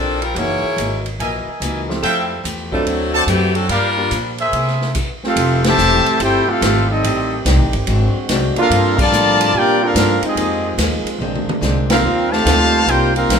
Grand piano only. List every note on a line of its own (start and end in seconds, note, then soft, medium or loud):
0.36 0.61 E3 medium
0.36 0.61 G#3 medium
0.36 0.62 A#3 medium
0.36 0.62 D#4 medium
0.36 0.62 F#4 medium
1.89 2.02 F3 medium
1.89 2.02 A3 medium
1.89 2.02 C4 medium
1.89 2.02 E4 medium
1.89 2.03 G4 medium
2.72 3.26 F#3 medium
2.72 3.26 A3 medium
2.72 3.26 C4 medium
2.72 3.26 D4 medium
2.72 3.26 A4 medium
3.97 4.10 G3 medium
3.97 4.10 A#3 medium
3.97 4.11 D4 medium
3.97 4.11 F4 medium
3.97 4.11 A#4 medium